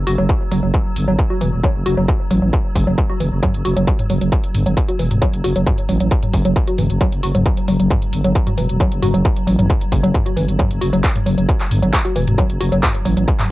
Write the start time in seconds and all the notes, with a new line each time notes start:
Already playing: F#3
0.07 F#1 F#4, open hi-hat
0.18 F#1 F#3
0.29 kick
0.52 F#1 F#3, open hi-hat
0.63 F#1 F#3
0.74 kick
0.96 G1, open hi-hat
1.08 G1 F#3
1.19 kick
1.30 F#4
1.41 E1 E3, open hi-hat
1.53 E1
1.63 F#3, kick
1.75 F#1
1.86 F#1 F#4, open hi-hat
1.97 F#1 F#3
2.08 kick
2.31 A1 F#3, open hi-hat
2.42 A1 F#3
2.53 kick
2.76 F#1, kick, open hi-hat
2.87 F#1 F#3
2.98 kick
3.10 F#4
3.20 F#1 E3, open hi-hat
3.32 F#1
3.43 F#3, kick, closed hi-hat, mid tom
3.54 F#1, closed hi-hat
3.65 F#1 F#4, open hi-hat
3.77 F#1 F#3, closed hi-hat
3.87 kick, closed hi-hat
3.99 closed hi-hat, mid tom
4.10 F#1 F#3, open hi-hat
4.21 F#1 F#3, closed hi-hat
4.32 kick, closed hi-hat
4.44 closed hi-hat
4.55 G1, open hi-hat, mid tom
4.66 G1 F#3, closed hi-hat
4.77 kick, closed hi-hat
4.88 F#4, closed hi-hat
4.99 E1 E3, open hi-hat
5.11 E1, closed hi-hat, mid tom
5.22 F#3, kick, closed hi-hat
5.33 F#1, closed hi-hat
5.44 F#1 F#4, open hi-hat
5.56 F#1 F#3, closed hi-hat
5.67 kick, closed hi-hat, mid tom
5.78 closed hi-hat
5.89 A1 F#3, open hi-hat
6.00 A1 F#3, closed hi-hat
6.11 kick, closed hi-hat
6.23 closed hi-hat, mid tom
6.34 F#1, kick, open hi-hat
6.45 F#1 F#3, closed hi-hat
6.56 kick, closed hi-hat
6.68 F#4, closed hi-hat
6.78 F#1 E3, open hi-hat, mid tom
6.90 F#1, closed hi-hat
7.01 F#3, kick, closed hi-hat
7.12 F#1, closed hi-hat
7.23 F#1 F#4, open hi-hat
7.35 F#1 F#3, closed hi-hat, mid tom
7.46 kick, closed hi-hat
7.57 closed hi-hat
7.68 F#1 F#3, open hi-hat
7.80 F#1 F#3, closed hi-hat
7.90 kick, closed hi-hat, mid tom
8.02 closed hi-hat
8.13 G1, open hi-hat
8.24 G1 F#3, closed hi-hat
8.35 kick, closed hi-hat
8.47 F#4, closed hi-hat, mid tom
8.58 E1 E3, open hi-hat
8.69 E1, closed hi-hat
8.80 F#3, kick, closed hi-hat
8.92 F#1, closed hi-hat
9.02 F#1 F#4, open hi-hat, mid tom
9.14 F#1 F#3, closed hi-hat
9.25 kick, closed hi-hat
9.36 closed hi-hat
9.47 A1 F#3, open hi-hat
9.59 A1 F#3, closed hi-hat, mid tom
9.70 kick, closed hi-hat
9.81 closed hi-hat
9.92 F#1, kick, open hi-hat
10.03 F#1 F#3, closed hi-hat
10.14 kick, closed hi-hat, mid tom
10.26 F#4, closed hi-hat
10.37 G1 E3, open hi-hat
10.48 G1, closed hi-hat
10.59 F#3, kick, closed hi-hat, mid tom
10.71 F#1, closed hi-hat
10.81 F#1 F#4, open hi-hat
10.93 F#1 F#3, closed hi-hat
11.04 kick, clap, closed hi-hat
11.16 closed hi-hat, mid tom
11.26 F#1 F#3, open hi-hat
11.38 F#1 F#3, closed hi-hat
11.49 kick, closed hi-hat
11.60 clap, closed hi-hat
11.71 G1, open hi-hat, mid tom
11.82 G1 F#3, closed hi-hat
11.93 kick, clap, closed hi-hat
12.05 F#4, closed hi-hat
12.16 E1 E3, open hi-hat
12.27 E1, closed hi-hat, mid tom
12.38 F#3, kick, closed hi-hat
12.50 F#1, closed hi-hat
12.61 F#1 F#4, open hi-hat
12.72 F#1 F#3, closed hi-hat
12.83 kick, clap, closed hi-hat, mid tom
12.95 closed hi-hat
13.05 A1 F#3, open hi-hat
13.17 A1 F#3, closed hi-hat
13.28 kick, closed hi-hat
13.39 clap, closed hi-hat, mid tom